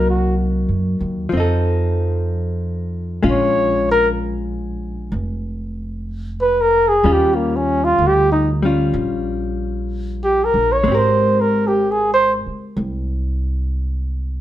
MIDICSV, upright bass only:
0, 0, Header, 1, 3, 480
1, 0, Start_track
1, 0, Tempo, 953895
1, 1623, Time_signature, 4, 2, 24, 8
1, 7251, End_track
2, 0, Start_track
2, 0, Title_t, "Upright bass"
2, 0, Program_c, 0, 32
2, 0, Note_on_c, 0, 36, 72
2, 321, Note_off_c, 0, 36, 0
2, 345, Note_on_c, 0, 42, 52
2, 493, Note_off_c, 0, 42, 0
2, 506, Note_on_c, 0, 39, 58
2, 653, Note_off_c, 0, 39, 0
2, 665, Note_on_c, 0, 41, 69
2, 1604, Note_off_c, 0, 41, 0
2, 1626, Note_on_c, 0, 34, 72
2, 2564, Note_off_c, 0, 34, 0
2, 2575, Note_on_c, 0, 29, 67
2, 3520, Note_off_c, 0, 29, 0
2, 3540, Note_on_c, 0, 39, 72
2, 4002, Note_off_c, 0, 39, 0
2, 4017, Note_on_c, 0, 38, 64
2, 4481, Note_off_c, 0, 38, 0
2, 4496, Note_on_c, 0, 34, 68
2, 5289, Note_off_c, 0, 34, 0
2, 5303, Note_on_c, 0, 34, 59
2, 5451, Note_off_c, 0, 34, 0
2, 5457, Note_on_c, 0, 32, 72
2, 6249, Note_off_c, 0, 32, 0
2, 6423, Note_on_c, 0, 36, 68
2, 7251, Note_off_c, 0, 36, 0
2, 7251, End_track
3, 0, Start_track
3, 0, Title_t, "Muted upright bass strokes"
3, 6272, Note_on_c, 9, 29, 33
3, 6322, Note_off_c, 9, 29, 0
3, 7251, End_track
0, 0, End_of_file